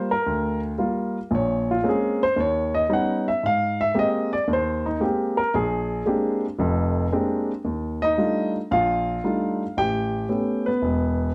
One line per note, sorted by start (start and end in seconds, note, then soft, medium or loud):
0.00 0.12 G3 medium
0.00 0.12 A#3 soft
0.00 0.12 F4 medium
0.11 0.60 A#4 medium
0.26 0.72 D2 medium
0.78 1.17 G3 medium
0.78 1.17 A#3 soft
0.78 1.17 F4 medium
1.31 1.77 A#1 medium
1.31 1.77 A#2 medium
1.35 1.69 C#5 medium
1.71 1.85 F4 medium
1.83 2.22 G#3 medium
1.83 2.22 A#3 soft
1.83 2.22 C4 soft
1.83 2.22 C#4 medium
1.89 2.22 G#4 medium
2.23 2.38 C5 loud
2.36 2.83 D#2 medium
2.40 2.74 C#5 medium
2.75 2.90 D#5 medium
2.89 3.28 G3 soft
2.89 3.28 B3 soft
2.89 3.28 C#4 soft
2.89 3.28 D#4 medium
2.93 3.27 F#5 medium
3.28 3.43 E5 medium
3.43 3.89 G#2 medium
3.43 3.80 F5 medium
3.81 3.96 E5 medium
3.95 4.33 G#3 medium
3.95 4.33 A#3 soft
3.95 4.33 C4 soft
3.95 4.33 G4 medium
3.99 4.33 D#5 medium
4.33 4.48 D5 medium
4.48 4.94 D#2 medium
4.53 4.86 C5 medium
4.86 5.01 D#4 medium
5.00 5.39 G#3 medium
5.00 5.39 A#3 medium
5.00 5.39 C4 soft
5.00 5.03 G4 medium
5.04 5.38 G4 medium
5.37 5.53 A#4 medium
5.54 6.00 A#1 medium
5.54 6.40 G#4 medium
6.06 6.44 G#3 medium
6.06 6.45 A#3 soft
6.06 6.45 C4 soft
6.06 6.45 D4 soft
6.06 6.45 G4 medium
6.59 7.05 F1 medium
6.59 7.06 F2 medium
7.12 7.51 G#3 medium
7.12 7.50 A#3 soft
7.12 7.51 C4 medium
7.12 7.51 D4 soft
7.12 7.51 G4 medium
7.65 8.11 D#2 medium
8.02 8.16 D#4 medium
8.02 8.51 D#5 medium
8.18 8.56 G3 soft
8.18 8.56 A3 soft
8.18 8.56 D4 soft
8.18 8.56 D#4 soft
8.18 8.56 F4 soft
8.71 9.17 A#1 medium
8.71 9.23 F4 medium
8.71 9.80 F5 medium
9.24 9.62 G3 soft
9.24 9.62 A3 soft
9.24 9.62 D4 soft
9.24 9.62 D#4 soft
9.24 9.62 F4 medium
9.77 10.23 A1 soft
9.77 10.28 G4 medium
9.77 10.62 G5 loud
10.29 10.67 A3 soft
10.29 10.67 B3 soft
10.29 10.67 C#4 soft
10.29 10.68 G4 soft
10.66 11.33 B3 medium
10.66 11.35 B4 medium
10.82 11.28 E1 medium